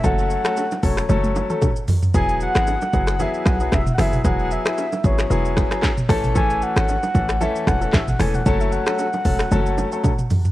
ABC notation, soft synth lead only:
X:1
M:4/4
L:1/16
Q:"Swing 16ths" 1/4=114
K:E
V:1 name="Soft synth lead"
f2 f4 c8 z2 | g2 f6 e2 f2 e3/2 f/2 e2 | f2 e4 c8 z2 | g2 f6 e2 f2 e f g f- |
f e f12 z2 |]